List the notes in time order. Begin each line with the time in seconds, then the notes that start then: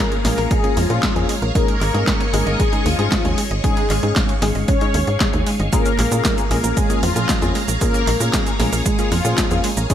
Already playing: A#3 C#4 F4 G#4 A#4 C#5 F5 A#5
0.12 G#4, closed hi-hat
0.25 A#1 G#3 A#3 C#4 F4 G#4 A#4, snare, open hi-hat
0.38 A#1 A#4, open hi-hat
0.51 G#3 G#4, kick, closed hi-hat
0.64 A#3 C#4 F4 G#4, closed hi-hat
0.77 F2 F3 G#3 F4, open hi-hat
0.90 A#2 A#3 C#4 F4 G#4, closed hi-hat
1.03 G#3, kick, snare, clap, closed hi-hat
1.16 F2 A#3 C#4 F4 G#4, closed hi-hat
1.29 G#3, open hi-hat
1.42 A#1 A#4, closed hi-hat
1.55 G#3 A#3 C#4 D#4 G#4 A#4 D#5 C#6, kick, closed hi-hat
1.68 D#4, closed hi-hat
1.81 G#1 G#3, clap, open hi-hat
1.94 G#2 G#3 C#4 D#4 G#4, closed hi-hat
2.07 G#3, kick, snare, clap, closed hi-hat
2.20 C#5, closed hi-hat
2.33 G#1 G#3 A#3 C#4 D#4 G#4 A#4, open hi-hat
2.46 G#1 D#5, closed hi-hat
2.59 G#3 G#4, kick, closed hi-hat
2.73 G#3 C#4 D#4 G#4, closed hi-hat
2.86 D#2 F3 G#3 F4, open hi-hat
2.99 G#2 G#3 C#4 D#4 G#4, closed hi-hat
3.12 G#3, kick, snare, clap, closed hi-hat
3.25 D#2 G#3 C#4 D#4 G#4 C#5, closed hi-hat
3.38 G#3, open hi-hat
3.51 G#1 D#5, closed hi-hat
3.64 G#3 C#4 D#4 G#4 F5, kick, closed hi-hat
3.77 D#4, closed hi-hat
3.90 G#1 G#3, clap, open hi-hat
4.03 G#2 G#3 C#4 D#4 G#4, closed hi-hat
4.16 G#3, kick, snare, clap, closed hi-hat
4.29 C#5, closed hi-hat
4.42 G#1 G#3 C#4 D#4 G#4, snare, open hi-hat
4.55 G#1 D#5, open hi-hat
4.68 G#3 C#4 C#5, kick, closed hi-hat
4.81 G#3 C#4 D#4 G#4, closed hi-hat
4.94 D#2 G#3, open hi-hat
5.07 G#2 G#4, closed hi-hat
5.20 G#3 C#4 D#4 G#4, kick, snare, clap, closed hi-hat
5.33 D#2 C#5, closed hi-hat
5.46 G#3, open hi-hat
5.60 G#1 D#5, closed hi-hat
5.72 G#3 A#3 C#4 F4 G#4 A#4 C#5 A#5, kick, closed hi-hat, cabasa
5.86 C#4, closed hi-hat, cabasa
5.99 A#1 G#3, clap, open hi-hat
6.12 A#2 A#3 C#4 F4 G#4, closed hi-hat, cabasa
6.25 G#3, kick, snare, clap, closed hi-hat, cabasa
6.38 G#4, closed hi-hat, cabasa
6.51 A#1 G#3 A#3 C#4 F4 G#4 A#4, open hi-hat
6.64 A#1 A#4, closed hi-hat, cabasa
6.77 G#3 G#4, kick, closed hi-hat, cabasa
6.90 A#3 C#4 F4 G#4, closed hi-hat, cabasa
7.03 F2 F3 G#3 F4, open hi-hat
7.16 A#2 A#3 C#4 F4 G#4, closed hi-hat, cabasa
7.29 G#3, kick, snare, clap, closed hi-hat, cabasa
7.42 F2 A#3 C#4 F4 G#4, closed hi-hat, cabasa
7.55 G#3, open hi-hat
7.68 A#1 A#4, closed hi-hat, cabasa
7.81 G#3 A#3 C#4 F4 G#4 A#4, kick, closed hi-hat, cabasa
7.94 C#4, closed hi-hat, cabasa
8.07 A#1 G#3, clap, open hi-hat
8.20 A#2 A#3 C#4 F4 G#4, closed hi-hat, cabasa
8.33 G#3, kick, snare, clap, closed hi-hat, cabasa
8.47 G#4, closed hi-hat, cabasa
8.59 A#1 G#3 A#3 C#4 F4 G#4 A#4, snare, open hi-hat
8.73 A#1 A#4, open hi-hat, cabasa
8.86 G#3 G#4, kick, closed hi-hat, cabasa
8.99 A#3 C#4 F4 G#4, closed hi-hat, cabasa
9.12 F2 F3 G#3 F4, open hi-hat
9.25 A#2 A#3 C#4 F4 G#4, closed hi-hat, cabasa
9.38 G#3, kick, snare, clap, closed hi-hat, cabasa
9.51 F2 A#3 C#4 F4 G#4, closed hi-hat, cabasa
9.64 G#3, open hi-hat
9.77 A#1 A#4, closed hi-hat, cabasa
9.90 G#3 C#4 D#4 G#4 C#5 D#5 C#6, kick, closed hi-hat, cabasa